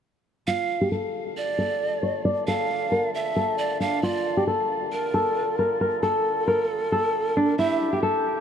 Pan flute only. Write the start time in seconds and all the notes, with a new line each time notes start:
0.47 F5
1.37 D5
2.47 F5
3.15 E5
3.58 D5
3.81 F5
4.03 D5
4.92 A#4
6.03 A4
7.58 E5